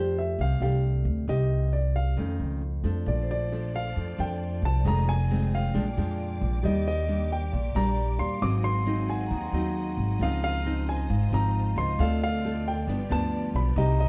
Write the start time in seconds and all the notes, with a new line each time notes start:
Already playing: F2 F3 A3 D4 G4 C5
0.19 E5
0.39 C2 C3 F5
0.60 C2 A3 D4 G4 F5
1.05 D2
1.28 C2 C3 A#3 D#4 G4 D#5
1.73 D5
1.96 F5
2.17 F2 D#3 A3 C#4
2.40 C#2
2.84 F2 F3 A3 D4
3.06 A#1 A#2 F4 A4 D5
3.23 C5
3.31 D5
3.52 F3 A3 D4
3.76 F5
3.96 F2
4.18 F2 F3 A3 D4 D5 G5
4.62 C2 A5
4.85 F1 F2 D#3 G#3 C4 F4 G#4 D#5 A#5
5.09 G#5
5.30 D#3 G#3 C4
5.53 F5 G5
5.73 A#1 A#2 F3 G#3 A#3 D4 F4 D6
5.97 F2 F3 G#3 D4
6.41 A#1
6.63 D#2 D#3 G3 A#3 D4 G4 D#5
6.88 D#5
7.08 G3 A#3 D4
7.32 G5
7.52 A#1 A#2
7.75 A#1 G3 A#3 D4 A#5
8.19 D#2 F5 C6
8.42 G#1 G#2 F#3 C4 D#4 F#4 G#4 D#5 D6
8.64 C6
8.86 F#3 C4 D#4
9.09 F#5 G#5
9.26 A#5
9.30 D#2 D#3
9.42 C6
9.52 D#2 F#3 C4 D#4
9.97 G#1
10.19 C#2 C#3 F3 C4 D#4 F4 C5 F5
10.44 F5
10.65 F3 C4 D#4
10.89 G#5
11.10 G#1 G#2 F5
11.32 G#1 F3 C4 D#4 A#5
11.76 C#2 D#5 C6
11.99 D2 D3 C4 F4 A4 D5 F5
12.23 F5
12.44 C4 F4 A4
12.68 G5
12.88 G1 G2 F3 B3 D4 G4
13.09 D2 F3 B3 D4 A5
13.54 B1 B5
13.76 C2 C3 A#3 D#4 G4 C5 D#5 A#5
14.00 D#5